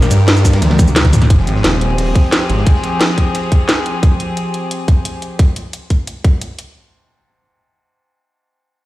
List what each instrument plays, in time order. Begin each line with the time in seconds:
Already playing: string section G3 D4 G4 A#4
0.02 snare, closed hi-hat, shaker
0.11 detuned saw bass G2, snare, closed hi-hat, ride, shaker
0.28 snare, closed hi-hat, ride
0.36 snare, shaker
0.45 kick, snare, open hi-hat, ride, shaker
0.53 snare, closed hi-hat, ride
0.62 detuned saw bass D2, snare, closed hi-hat, high tom, ride
0.70 snare, high tom, ride
0.79 kick, closed hi-hat, high tom, ride, shaker
0.88 mid tom, shaker
0.96 snare, closed hi-hat, mid tom, ride
1.05 kick, snare, closed hi-hat, mid tom
1.13 snare, closed hi-hat, mid tom, ride, shaker
1.22 snare, closed hi-hat, mid tom
1.30 detuned saw bass F1, string section F3 C4 G4 G#4, kick, closed hi-hat, ride
1.38 snare
1.47 detuned saw bass G#1, closed hi-hat, ride
1.56 snare
1.64 detuned saw bass D#1, snare, closed hi-hat, ride
1.81 closed hi-hat, ride
1.90 ride
1.98 closed hi-hat, open hi-hat
2.07 ride
2.14 kick, closed hi-hat, ride
2.32 snare, closed hi-hat, ride
2.41 ride
2.49 detuned saw bass G#1, snare, closed hi-hat, ride
2.58 snare
2.66 kick, closed hi-hat, ride
2.76 snare
2.83 snare, closed hi-hat, ride
3.00 snare, closed hi-hat, ride
3.10 snare
3.18 kick, closed hi-hat, ride
3.35 closed hi-hat, ride
3.43 ride
3.52 kick, closed hi-hat, ride
3.68 snare, closed hi-hat, ride
3.86 closed hi-hat, ride
4.03 kick, closed hi-hat
4.20 closed hi-hat
4.37 closed hi-hat
4.54 closed hi-hat
4.71 closed hi-hat
4.88 kick, closed hi-hat
5.05 closed hi-hat
5.22 closed hi-hat
5.39 kick, closed hi-hat
5.56 closed hi-hat
5.73 closed hi-hat
5.90 kick, closed hi-hat
6.07 closed hi-hat
6.24 kick, closed hi-hat
6.41 closed hi-hat
6.59 closed hi-hat